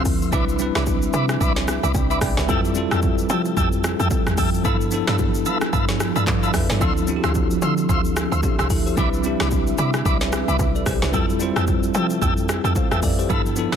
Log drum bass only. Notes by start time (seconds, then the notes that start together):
0.05 D2
0.33 C2
0.75 C2
1.14 C3
1.41 C2
1.83 C2
1.94 C2
2.22 B1
2.37 C2
2.49 F2
2.91 F2
3.30 F3
3.57 F2
4.00 F2
4.27 E2
4.38 F2
4.65 G2
5.08 G2
5.46 G3
5.73 G2
6.16 G2
6.27 G2
6.54 F2
6.70 G2
6.81 D2
7.24 D2
7.62 D3
7.89 D2
8.32 D2
8.59 C2
8.70 D2
8.97 C2
9.40 C2
9.78 C3
10.05 C2
10.48 C2
10.59 C2
10.86 B1
11.02 C2
11.14 F2
11.56 F2
11.95 F3
12.22 F2
12.64 F2
12.91 E2
13.03 F2
13.30 G2
13.72 G2